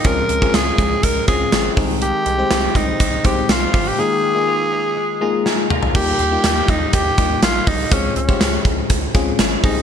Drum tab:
CC |----------------|----------------|----------------|x---------------|
HH |x-x-x-x-x-x-x-o-|x-x-x-x-x-x-x-o-|----------------|--x-x-x-x-x-x-o-|
TB |----x-------x---|----x-------x---|----------------|----x-------x---|
SD |----o-------o---|----o-------o---|------------o---|----o-------o---|
T2 |----------------|----------------|--------------o-|----------------|
FT |----------------|----------------|---------------o|----------------|
BD |o--o--o-o-o---o-|------o-o-o---o-|----------------|o-----o-o-o---o-|

CC |----------------|
HH |x-x-x-x-x-x-x-o-|
TB |----x-------x---|
SD |----o-------o---|
T2 |----------------|
FT |----------------|
BD |o--o--o-o-o---o-|